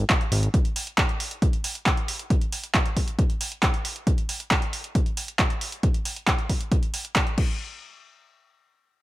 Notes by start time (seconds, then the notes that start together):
0.10 kick, clap, closed hi-hat
0.21 closed hi-hat
0.32 G#1, open hi-hat
0.43 closed hi-hat
0.54 kick, closed hi-hat
0.65 closed hi-hat
0.76 open hi-hat
0.87 closed hi-hat
0.98 kick, clap, closed hi-hat
1.09 closed hi-hat
1.20 open hi-hat
1.31 closed hi-hat
1.42 kick, closed hi-hat
1.53 closed hi-hat
1.64 open hi-hat
1.75 closed hi-hat
1.86 kick, clap, closed hi-hat
1.97 closed hi-hat
2.08 open hi-hat
2.19 closed hi-hat
2.30 kick, closed hi-hat
2.41 closed hi-hat
2.52 open hi-hat
2.64 closed hi-hat
2.75 kick, clap, closed hi-hat
2.86 closed hi-hat
2.97 kick, open hi-hat
3.08 closed hi-hat
3.19 kick, closed hi-hat
3.30 closed hi-hat
3.41 open hi-hat
3.52 closed hi-hat
3.63 kick, clap, closed hi-hat
3.74 closed hi-hat
3.85 open hi-hat
3.96 closed hi-hat
4.07 kick, closed hi-hat
4.18 closed hi-hat
4.29 open hi-hat
4.40 closed hi-hat
4.51 kick, clap, closed hi-hat
4.62 closed hi-hat
4.73 open hi-hat
4.84 closed hi-hat
4.95 kick, closed hi-hat
5.06 closed hi-hat
5.17 open hi-hat
5.28 closed hi-hat
5.39 kick, clap, closed hi-hat
5.50 closed hi-hat
5.61 open hi-hat
5.72 closed hi-hat
5.83 kick, closed hi-hat
5.94 closed hi-hat
6.05 open hi-hat
6.16 closed hi-hat
6.27 kick, clap, closed hi-hat
6.39 closed hi-hat
6.50 kick, open hi-hat
6.61 closed hi-hat
6.72 kick, closed hi-hat
6.83 closed hi-hat
6.94 open hi-hat
7.05 closed hi-hat
7.16 kick, clap, closed hi-hat
7.27 closed hi-hat
7.38 kick, crash